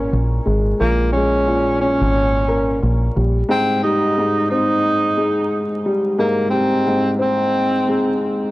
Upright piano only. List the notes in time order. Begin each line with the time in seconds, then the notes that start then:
Already playing: A#2 G#3 C#4 A#4
0.46 G#3
0.80 A#2
1.17 G#3
1.47 A#2
1.83 C#4
2.48 A#4
3.16 G3
3.49 G#2
3.84 G3
4.18 G#2
4.51 C4
5.17 G#3
5.86 G3
6.19 G#2
6.52 G3
6.87 G#2
7.19 C4
7.89 G#3